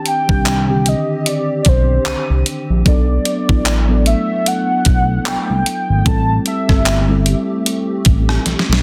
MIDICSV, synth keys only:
0, 0, Header, 1, 2, 480
1, 0, Start_track
1, 0, Tempo, 800000
1, 1714, Time_signature, 4, 2, 24, 8
1, 5296, End_track
2, 0, Start_track
2, 0, Title_t, "Synth keys"
2, 0, Program_c, 0, 88
2, 0, Control_c, 0, 64, 127
2, 0, Note_on_c, 0, 51, 73
2, 0, Note_on_c, 0, 60, 72
2, 0, Note_on_c, 0, 62, 74
2, 0, Note_on_c, 0, 67, 81
2, 167, Note_off_c, 0, 51, 0
2, 167, Note_on_c, 0, 51, 75
2, 173, Note_off_c, 0, 60, 0
2, 173, Note_on_c, 0, 60, 64
2, 179, Note_off_c, 0, 62, 0
2, 179, Note_on_c, 0, 62, 72
2, 182, Note_off_c, 0, 67, 0
2, 182, Note_on_c, 0, 67, 80
2, 336, Note_off_c, 0, 51, 0
2, 338, Note_off_c, 0, 60, 0
2, 341, Note_off_c, 0, 62, 0
2, 343, Note_off_c, 0, 67, 0
2, 408, Note_on_c, 0, 51, 74
2, 413, Note_on_c, 0, 60, 71
2, 418, Note_on_c, 0, 50, 68
2, 423, Note_on_c, 0, 67, 86
2, 1109, Note_off_c, 0, 51, 0
2, 1112, Note_off_c, 0, 60, 0
2, 1115, Note_off_c, 0, 50, 0
2, 1117, Note_off_c, 0, 67, 0
2, 1709, Note_on_c, 0, 54, 80
2, 1713, Note_on_c, 0, 59, 75
2, 1719, Note_on_c, 0, 62, 77
2, 1722, Control_c, 0, 64, 0
2, 1723, Note_on_c, 0, 69, 92
2, 1811, Control_c, 0, 64, 127
2, 1978, Note_off_c, 0, 54, 0
2, 1981, Note_off_c, 0, 59, 0
2, 1984, Note_off_c, 0, 62, 0
2, 1986, Note_off_c, 0, 69, 0
2, 2088, Note_on_c, 0, 54, 75
2, 2094, Note_on_c, 0, 59, 70
2, 2098, Note_on_c, 0, 62, 68
2, 2102, Note_on_c, 0, 64, 82
2, 2256, Note_off_c, 0, 54, 0
2, 2259, Note_off_c, 0, 59, 0
2, 2261, Note_off_c, 0, 62, 0
2, 2263, Note_off_c, 0, 64, 0
2, 2328, Note_on_c, 0, 54, 76
2, 2331, Note_on_c, 0, 59, 72
2, 2336, Note_on_c, 0, 62, 69
2, 2343, Note_on_c, 0, 69, 85
2, 3030, Note_off_c, 0, 54, 0
2, 3031, Note_off_c, 0, 59, 0
2, 3034, Note_off_c, 0, 62, 0
2, 3037, Note_off_c, 0, 69, 0
2, 3629, Note_on_c, 0, 55, 79
2, 3635, Note_on_c, 0, 60, 73
2, 3639, Note_on_c, 0, 64, 71
2, 3642, Control_c, 0, 64, 0
2, 3643, Note_on_c, 0, 69, 87
2, 3750, Control_c, 0, 64, 127
2, 3899, Note_off_c, 0, 55, 0
2, 3901, Note_off_c, 0, 60, 0
2, 3904, Note_off_c, 0, 64, 0
2, 3906, Note_off_c, 0, 69, 0
2, 4008, Note_on_c, 0, 55, 73
2, 4013, Note_on_c, 0, 60, 66
2, 4018, Note_on_c, 0, 64, 66
2, 4022, Note_on_c, 0, 69, 80
2, 4176, Note_off_c, 0, 55, 0
2, 4178, Note_off_c, 0, 60, 0
2, 4181, Note_off_c, 0, 64, 0
2, 4183, Note_off_c, 0, 69, 0
2, 4250, Note_on_c, 0, 55, 76
2, 4254, Note_on_c, 0, 60, 72
2, 4260, Note_on_c, 0, 64, 68
2, 4264, Note_on_c, 0, 69, 85
2, 4951, Note_off_c, 0, 55, 0
2, 4953, Note_off_c, 0, 60, 0
2, 4956, Note_off_c, 0, 64, 0
2, 4958, Note_off_c, 0, 69, 0
2, 5296, End_track
0, 0, End_of_file